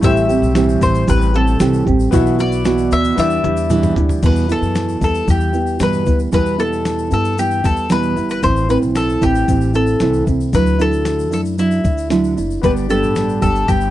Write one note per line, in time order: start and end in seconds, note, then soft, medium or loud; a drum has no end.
0.01 0.39 A1 loud
0.01 0.29 A2 medium
0.01 0.29 E3 medium
0.01 0.29 G3 medium
0.01 2.08 A3 medium
0.01 0.29 C4 medium
0.01 2.09 E4 medium
0.01 2.09 G4 medium
0.01 0.27 G4 loud
0.01 2.10 C5 medium
0.01 0.82 E5 loud
0.01 kick loud
0.01 shaker medium
0.17 shaker soft
0.28 0.55 G3 soft
0.28 0.55 C4 soft
0.28 0.55 G4 medium
0.28 shaker medium
0.28 shaker soft
0.42 0.78 B1 medium
0.42 shaker medium
0.55 1.07 A2 medium
0.55 1.06 E3 medium
0.55 1.06 G3 medium
0.55 1.07 C4 medium
0.55 1.07 G4 medium
0.55 snare loud
0.55 shaker medium
0.69 shaker soft
0.81 1.06 A1 medium
0.81 1.09 C5 medium
0.81 kick medium
0.81 shaker medium
0.95 shaker soft
1.06 1.56 A1 loud
1.06 1.33 E3 medium
1.06 1.34 G3 medium
1.06 1.34 C4 medium
1.06 1.33 G4 medium
1.06 1.36 B4 medium
1.06 kick medium
1.06 shaker medium
1.21 shaker medium
1.34 1.59 G3 soft
1.34 1.59 C4 soft
1.34 1.60 G4 soft
1.34 1.84 A4 medium
1.34 shaker medium
1.47 shaker soft
1.59 1.85 C2 medium
1.59 1.86 A2 medium
1.59 1.86 E3 medium
1.59 1.86 G3 medium
1.59 1.86 C4 medium
1.59 1.85 G4 medium
1.59 snare loud
1.59 shaker medium
1.73 shaker soft
1.86 2.11 A1 medium
1.86 2.12 G3 soft
1.86 2.13 C4 medium
1.86 2.12 G4 medium
1.86 kick medium
1.86 shaker soft
2.00 shaker soft
2.11 2.88 B1 loud
2.11 2.38 B2 medium
2.11 2.39 E3 medium
2.11 3.14 B3 medium
2.11 2.39 B3 medium
2.11 3.15 E4 medium
2.11 2.38 E4 loud
2.11 2.37 F#4 medium
2.11 3.16 F#4 medium
2.11 kick loud
2.11 shaker medium
2.15 3.17 E5 medium
2.26 shaker medium
2.39 2.65 B3 soft
2.39 2.65 E4 soft
2.39 2.65 F#4 medium
2.39 2.94 D5 medium
2.39 shaker soft
2.51 shaker soft
2.51 shaker medium
2.65 3.17 B2 medium
2.65 3.17 E3 medium
2.65 3.17 B3 medium
2.65 3.18 E4 medium
2.65 3.18 F#4 medium
2.65 snare loud
2.65 shaker medium
2.78 shaker soft
2.91 3.16 D2 medium
2.91 3.18 E5 loud
2.91 shaker medium
2.91 shaker soft
3.04 shaker soft
3.16 3.42 E2 loud
3.16 3.44 E3 medium
3.16 3.44 G3 medium
3.16 4.20 B3 medium
3.16 3.43 D4 medium
3.16 4.20 E4 medium
3.16 3.43 E4 medium
3.16 4.21 G4 medium
3.16 3.93 E5 medium
3.16 snare medium
3.16 shaker medium
3.20 4.22 D5 medium
3.30 shaker soft
3.44 3.93 E2 loud
3.44 3.69 E3 soft
3.44 3.70 G3 soft
3.44 3.70 D4 soft
3.44 3.70 E4 soft
3.44 high tom medium
3.44 shaker medium
3.57 shaker medium
3.57 shaker soft
3.70 3.96 E2 medium
3.70 3.96 B2 medium
3.70 3.97 E3 medium
3.70 3.96 G3 medium
3.70 3.96 D4 medium
3.70 3.95 E4 medium
3.70 mid tom medium
3.70 shaker medium
3.83 mid tom medium
3.83 shaker soft
3.96 4.21 D2 medium
3.96 4.22 E3 soft
3.96 4.22 G3 medium
3.96 4.23 D4 medium
3.96 4.23 E4 medium
3.96 floor tom loud
3.96 shaker medium
4.09 floor tom medium
4.09 shaker soft
4.22 4.49 E2 medium
4.22 4.59 E2 medium
4.22 4.48 B2 medium
4.22 4.48 E3 medium
4.22 4.49 G3 medium
4.22 4.48 B3 medium
4.22 4.47 E4 medium
4.22 4.51 B4 medium
4.22 kick loud
4.22 crash medium
4.22 shaker medium
4.36 shaker soft
4.48 5.02 E2 medium
4.48 5.02 B2 medium
4.48 5.02 E3 medium
4.48 5.01 B3 medium
4.48 5.00 E4 medium
4.48 5.03 A4 medium
4.48 shaker soft
4.62 4.98 F#2 medium
4.62 shaker soft
4.75 snare medium
4.75 shaker medium
4.89 shaker soft
5.01 5.26 E2 medium
5.01 5.26 E3 soft
5.01 5.26 G3 soft
5.01 5.27 B3 soft
5.01 5.27 E4 soft
5.01 5.27 A4 medium
5.01 kick medium
5.01 shaker soft
5.15 shaker soft
5.27 5.76 E2 medium
5.27 5.54 E3 medium
5.27 5.54 G3 medium
5.27 5.53 B3 medium
5.27 5.52 E4 medium
5.27 5.83 G4 medium
5.27 kick medium
5.27 shaker medium
5.40 shaker soft
5.53 5.79 E3 soft
5.53 5.79 G3 soft
5.53 5.79 B3 soft
5.53 5.79 E4 soft
5.53 shaker soft
5.67 shaker soft
5.79 6.06 E2 medium
5.79 6.04 G2 medium
5.79 6.06 B2 medium
5.79 6.06 E3 medium
5.79 6.06 G3 medium
5.79 6.05 B3 medium
5.79 6.05 E4 medium
5.79 6.18 B4 medium
5.79 snare medium
5.79 shaker medium
5.93 shaker soft
6.06 6.31 D2 medium
6.06 6.31 E3 soft
6.06 6.32 G3 soft
6.06 6.32 B3 soft
6.06 6.32 E4 medium
6.06 kick medium
6.06 shaker soft
6.19 shaker soft
6.32 6.59 E2 medium
6.32 7.08 E2 medium
6.32 6.58 B2 medium
6.32 6.58 E3 medium
6.32 6.57 G3 medium
6.32 6.57 B3 medium
6.32 6.57 E4 medium
6.32 6.61 B4 medium
6.32 kick medium
6.32 shaker medium
6.46 shaker soft
6.58 7.12 E2 medium
6.58 7.12 B2 medium
6.58 7.12 E3 medium
6.58 7.11 G3 medium
6.58 7.10 B3 medium
6.58 7.10 E4 medium
6.58 7.12 A4 medium
6.58 shaker soft
6.73 shaker soft
6.85 snare medium
6.85 shaker medium
6.98 shaker soft
7.11 7.60 G2 medium
7.11 7.36 E3 soft
7.11 7.37 G3 soft
7.11 7.37 B3 soft
7.11 7.37 E4 soft
7.11 7.37 A4 medium
7.11 shaker soft
7.25 shaker soft
7.37 7.64 E3 medium
7.37 7.64 G3 medium
7.37 7.63 B3 medium
7.37 7.62 E4 medium
7.37 7.66 G4 medium
7.37 shaker medium
7.51 shaker soft
7.64 8.13 E2 medium
7.64 7.89 E3 soft
7.64 7.89 G3 soft
7.64 7.89 B3 soft
7.64 7.90 E4 soft
7.64 7.92 A4 medium
7.64 kick medium
7.64 shaker soft
7.77 shaker soft
7.89 8.16 E2 medium
7.89 8.16 B2 medium
7.89 8.17 E3 medium
7.89 8.16 G3 medium
7.89 8.16 B3 medium
7.89 8.15 E4 medium
7.89 8.30 B4 medium
7.89 snare medium
7.89 shaker medium
8.03 shaker soft
8.16 8.41 G1 medium
8.16 8.42 E3 soft
8.16 8.43 G3 soft
8.16 8.43 B3 soft
8.16 8.43 E4 medium
8.16 shaker soft
8.29 8.43 B4 medium
8.29 shaker soft
8.42 8.79 A1 loud
8.42 8.69 A2 medium
8.42 8.68 E3 medium
8.42 8.68 A3 medium
8.42 8.68 C4 medium
8.42 8.67 E4 medium
8.42 8.70 C5 loud
8.42 kick loud
8.42 shaker medium
8.56 shaker soft
8.69 9.22 A2 soft
8.69 9.47 E3 medium
8.69 9.23 A3 medium
8.69 9.21 C4 medium
8.69 9.21 E4 medium
8.69 8.77 B4 medium
8.69 shaker soft
8.82 9.19 B1 medium
8.82 shaker soft
8.95 9.23 A4 medium
8.95 snare medium
8.95 shaker medium
9.09 shaker soft
9.21 9.46 A1 medium
9.21 9.47 A3 soft
9.21 9.48 C4 soft
9.21 9.48 E4 soft
9.21 9.75 G4 medium
9.21 kick medium
9.21 shaker soft
9.35 shaker soft
9.48 9.97 A1 loud
9.48 9.74 E3 medium
9.48 9.74 A3 medium
9.48 9.74 C4 medium
9.48 9.72 E4 medium
9.48 kick medium
9.48 shaker medium
9.61 shaker soft
9.73 10.00 A3 soft
9.73 10.00 C4 soft
9.73 10.00 E4 soft
9.73 10.24 A4 medium
9.73 shaker soft
9.87 shaker soft
10.00 10.25 C2 medium
10.00 10.27 A2 medium
10.00 10.27 E3 medium
10.00 10.27 A3 medium
10.00 10.26 C4 medium
10.00 10.25 E4 medium
10.00 snare medium
10.00 shaker medium
10.13 shaker soft
10.26 10.51 C2 medium
10.26 10.52 A3 soft
10.26 10.53 C4 soft
10.26 10.53 E4 soft
10.26 kick medium
10.26 shaker soft
10.40 shaker soft
10.53 11.32 D2 medium
10.53 10.79 D3 medium
10.53 10.79 F#3 medium
10.53 10.79 A3 medium
10.53 10.78 D4 medium
10.53 10.77 E4 medium
10.53 10.81 B4 medium
10.53 kick loud
10.53 shaker medium
10.66 shaker soft
10.79 11.34 D3 medium
10.79 11.32 F#3 medium
10.79 11.31 A3 medium
10.79 11.32 D4 medium
10.79 11.29 E4 medium
10.79 11.32 A4 medium
10.79 shaker soft
10.91 shaker soft
10.93 shaker soft
11.05 snare medium
11.05 shaker medium
11.19 shaker soft
11.31 11.81 F#2 medium
11.31 11.57 A3 soft
11.31 11.57 D4 soft
11.31 11.58 E4 soft
11.31 11.40 A4 medium
11.31 shaker soft
11.45 shaker soft
11.57 11.84 F#3 medium
11.57 11.84 A3 medium
11.57 11.83 D4 medium
11.57 12.08 E4 medium
11.57 11.82 E4 medium
11.57 shaker medium
11.71 shaker soft
11.84 12.33 D2 medium
11.84 12.10 A3 soft
11.84 12.10 D4 soft
11.84 12.10 E4 soft
11.84 kick medium
11.84 shaker soft
11.97 shaker soft
12.10 12.37 D3 medium
12.10 12.37 F#3 medium
12.10 12.37 A3 medium
12.10 12.36 D4 medium
12.10 12.35 E4 medium
12.10 snare medium
12.10 shaker medium
12.24 shaker soft
12.37 12.61 F#1 medium
12.37 12.63 A3 soft
12.37 12.63 D4 soft
12.37 12.63 E4 medium
12.37 shaker soft
12.51 shaker soft
12.62 13.00 G1 medium
12.62 12.89 G2 medium
12.62 12.89 D3 medium
12.62 12.89 G3 medium
12.62 13.90 B3 medium
12.62 12.89 B3 medium
12.62 13.90 D4 medium
12.62 12.88 D4 medium
12.62 12.88 G4 medium
12.62 13.90 G4 medium
12.62 12.71 B4 medium
12.62 kick loud
12.62 shaker medium
12.66 13.90 D5 medium
12.77 shaker soft
12.89 13.43 G2 medium
12.89 13.42 D3 medium
12.89 13.43 G3 medium
12.89 13.42 B3 medium
12.89 13.41 D4 medium
12.89 13.41 G4 medium
12.89 13.41 A4 medium
12.89 shaker soft
13.03 13.39 A1 medium
13.03 shaker soft
13.16 snare medium
13.16 shaker medium
13.29 shaker soft
13.41 13.66 G1 medium
13.41 13.66 G3 soft
13.41 13.67 B3 soft
13.41 13.68 D4 soft
13.41 13.68 G4 soft
13.41 13.69 A4 medium
13.41 kick medium
13.41 shaker soft
13.55 shaker soft
13.68 13.90 G1 medium
13.68 13.90 G3 medium
13.68 13.90 B3 medium
13.68 13.90 D4 medium
13.68 13.90 G4 medium
13.68 kick medium
13.68 shaker medium
13.81 shaker soft